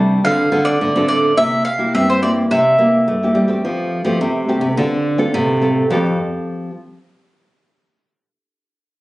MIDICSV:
0, 0, Header, 1, 4, 480
1, 0, Start_track
1, 0, Key_signature, -1, "major"
1, 0, Tempo, 566038
1, 1171, Time_signature, 4, 2, 24, 8
1, 7639, End_track
2, 0, Start_track
2, 0, Title_t, "Mandolin"
2, 0, Program_c, 0, 25
2, 0, Note_on_c, 0, 81, 104
2, 174, Note_off_c, 0, 81, 0
2, 209, Note_on_c, 0, 77, 96
2, 550, Note_on_c, 0, 74, 80
2, 581, Note_off_c, 0, 77, 0
2, 909, Note_off_c, 0, 74, 0
2, 920, Note_on_c, 0, 74, 82
2, 1148, Note_off_c, 0, 74, 0
2, 1166, Note_on_c, 0, 76, 89
2, 1392, Note_off_c, 0, 76, 0
2, 1397, Note_on_c, 0, 77, 88
2, 1647, Note_off_c, 0, 77, 0
2, 1651, Note_on_c, 0, 76, 88
2, 1763, Note_off_c, 0, 76, 0
2, 1778, Note_on_c, 0, 72, 75
2, 1885, Note_off_c, 0, 72, 0
2, 1888, Note_on_c, 0, 74, 84
2, 1954, Note_off_c, 0, 74, 0
2, 2130, Note_on_c, 0, 76, 77
2, 2818, Note_off_c, 0, 76, 0
2, 7639, End_track
3, 0, Start_track
3, 0, Title_t, "Nylon-string guitar"
3, 0, Program_c, 1, 24
3, 0, Note_on_c, 1, 55, 58
3, 0, Note_on_c, 1, 57, 65
3, 0, Note_on_c, 1, 62, 68
3, 183, Note_off_c, 1, 55, 0
3, 184, Note_off_c, 1, 57, 0
3, 186, Note_off_c, 1, 62, 0
3, 201, Note_on_c, 1, 50, 60
3, 205, Note_on_c, 1, 60, 55
3, 206, Note_on_c, 1, 65, 55
3, 210, Note_on_c, 1, 69, 67
3, 348, Note_off_c, 1, 60, 0
3, 350, Note_off_c, 1, 65, 0
3, 350, Note_off_c, 1, 69, 0
3, 435, Note_on_c, 1, 60, 53
3, 439, Note_on_c, 1, 65, 60
3, 444, Note_on_c, 1, 69, 59
3, 662, Note_off_c, 1, 50, 0
3, 668, Note_off_c, 1, 60, 0
3, 670, Note_off_c, 1, 65, 0
3, 671, Note_off_c, 1, 69, 0
3, 688, Note_on_c, 1, 45, 54
3, 812, Note_on_c, 1, 60, 69
3, 818, Note_on_c, 1, 65, 64
3, 821, Note_on_c, 1, 69, 76
3, 1134, Note_off_c, 1, 60, 0
3, 1135, Note_off_c, 1, 65, 0
3, 1138, Note_off_c, 1, 69, 0
3, 1146, Note_off_c, 1, 45, 0
3, 1166, Note_on_c, 1, 48, 58
3, 1168, Note_on_c, 1, 58, 57
3, 1174, Note_on_c, 1, 64, 58
3, 1175, Note_on_c, 1, 67, 60
3, 1396, Note_off_c, 1, 58, 0
3, 1397, Note_off_c, 1, 64, 0
3, 1398, Note_off_c, 1, 67, 0
3, 1510, Note_on_c, 1, 58, 72
3, 1515, Note_on_c, 1, 64, 67
3, 1520, Note_on_c, 1, 67, 70
3, 1625, Note_off_c, 1, 48, 0
3, 1648, Note_on_c, 1, 43, 54
3, 1843, Note_off_c, 1, 58, 0
3, 1846, Note_off_c, 1, 64, 0
3, 1847, Note_off_c, 1, 67, 0
3, 1881, Note_on_c, 1, 58, 57
3, 1885, Note_on_c, 1, 64, 57
3, 1888, Note_on_c, 1, 67, 60
3, 2106, Note_off_c, 1, 43, 0
3, 2133, Note_on_c, 1, 48, 60
3, 2196, Note_off_c, 1, 58, 0
3, 2198, Note_off_c, 1, 64, 0
3, 2199, Note_off_c, 1, 67, 0
3, 2360, Note_on_c, 1, 58, 55
3, 2366, Note_on_c, 1, 64, 53
3, 2370, Note_on_c, 1, 67, 60
3, 2589, Note_off_c, 1, 48, 0
3, 2614, Note_on_c, 1, 43, 60
3, 2688, Note_off_c, 1, 58, 0
3, 2691, Note_off_c, 1, 64, 0
3, 2693, Note_off_c, 1, 67, 0
3, 2739, Note_on_c, 1, 58, 64
3, 2743, Note_on_c, 1, 64, 59
3, 2748, Note_on_c, 1, 67, 76
3, 2938, Note_off_c, 1, 58, 0
3, 2939, Note_off_c, 1, 64, 0
3, 2942, Note_off_c, 1, 67, 0
3, 2950, Note_on_c, 1, 57, 67
3, 2957, Note_on_c, 1, 60, 62
3, 2960, Note_on_c, 1, 67, 62
3, 3070, Note_off_c, 1, 43, 0
3, 3090, Note_on_c, 1, 53, 55
3, 3403, Note_off_c, 1, 57, 0
3, 3407, Note_off_c, 1, 60, 0
3, 3407, Note_off_c, 1, 67, 0
3, 3433, Note_on_c, 1, 57, 66
3, 3439, Note_on_c, 1, 60, 64
3, 3440, Note_on_c, 1, 67, 73
3, 3547, Note_off_c, 1, 53, 0
3, 3572, Note_on_c, 1, 48, 57
3, 3765, Note_off_c, 1, 57, 0
3, 3767, Note_off_c, 1, 60, 0
3, 3768, Note_off_c, 1, 67, 0
3, 3803, Note_on_c, 1, 57, 58
3, 3805, Note_on_c, 1, 60, 57
3, 3810, Note_on_c, 1, 67, 71
3, 3949, Note_off_c, 1, 57, 0
3, 3951, Note_off_c, 1, 60, 0
3, 3952, Note_off_c, 1, 67, 0
3, 4029, Note_off_c, 1, 48, 0
3, 4047, Note_on_c, 1, 50, 61
3, 4051, Note_on_c, 1, 60, 63
3, 4055, Note_on_c, 1, 65, 54
3, 4055, Note_on_c, 1, 69, 64
3, 4373, Note_off_c, 1, 60, 0
3, 4374, Note_off_c, 1, 65, 0
3, 4375, Note_off_c, 1, 69, 0
3, 4394, Note_on_c, 1, 60, 62
3, 4398, Note_on_c, 1, 65, 60
3, 4401, Note_on_c, 1, 69, 69
3, 4507, Note_off_c, 1, 50, 0
3, 4535, Note_on_c, 1, 45, 61
3, 4725, Note_off_c, 1, 60, 0
3, 4727, Note_off_c, 1, 65, 0
3, 4729, Note_off_c, 1, 69, 0
3, 4762, Note_on_c, 1, 60, 61
3, 4767, Note_on_c, 1, 65, 57
3, 4771, Note_on_c, 1, 69, 66
3, 4969, Note_off_c, 1, 60, 0
3, 4971, Note_off_c, 1, 65, 0
3, 4974, Note_off_c, 1, 69, 0
3, 4990, Note_off_c, 1, 45, 0
3, 5006, Note_on_c, 1, 53, 63
3, 5011, Note_on_c, 1, 60, 68
3, 5017, Note_on_c, 1, 67, 70
3, 5023, Note_on_c, 1, 69, 76
3, 5682, Note_off_c, 1, 53, 0
3, 5682, Note_off_c, 1, 60, 0
3, 5682, Note_off_c, 1, 67, 0
3, 5682, Note_off_c, 1, 69, 0
3, 7639, End_track
4, 0, Start_track
4, 0, Title_t, "Nylon-string guitar"
4, 0, Program_c, 2, 24
4, 0, Note_on_c, 2, 48, 91
4, 134, Note_off_c, 2, 48, 0
4, 208, Note_on_c, 2, 50, 97
4, 413, Note_off_c, 2, 50, 0
4, 439, Note_on_c, 2, 50, 93
4, 648, Note_off_c, 2, 50, 0
4, 689, Note_on_c, 2, 50, 88
4, 792, Note_off_c, 2, 50, 0
4, 811, Note_on_c, 2, 50, 85
4, 1117, Note_off_c, 2, 50, 0
4, 1166, Note_on_c, 2, 48, 98
4, 1372, Note_off_c, 2, 48, 0
4, 1649, Note_on_c, 2, 60, 86
4, 2059, Note_off_c, 2, 60, 0
4, 2127, Note_on_c, 2, 48, 98
4, 2334, Note_off_c, 2, 48, 0
4, 2361, Note_on_c, 2, 58, 78
4, 2582, Note_off_c, 2, 58, 0
4, 2609, Note_on_c, 2, 57, 72
4, 2827, Note_off_c, 2, 57, 0
4, 2840, Note_on_c, 2, 55, 81
4, 3062, Note_off_c, 2, 55, 0
4, 3092, Note_on_c, 2, 53, 88
4, 3399, Note_off_c, 2, 53, 0
4, 3430, Note_on_c, 2, 53, 83
4, 3542, Note_off_c, 2, 53, 0
4, 3569, Note_on_c, 2, 48, 89
4, 3877, Note_off_c, 2, 48, 0
4, 3910, Note_on_c, 2, 48, 86
4, 4022, Note_off_c, 2, 48, 0
4, 4049, Note_on_c, 2, 50, 98
4, 4458, Note_off_c, 2, 50, 0
4, 4528, Note_on_c, 2, 48, 105
4, 4938, Note_off_c, 2, 48, 0
4, 5007, Note_on_c, 2, 41, 89
4, 5233, Note_off_c, 2, 41, 0
4, 7639, End_track
0, 0, End_of_file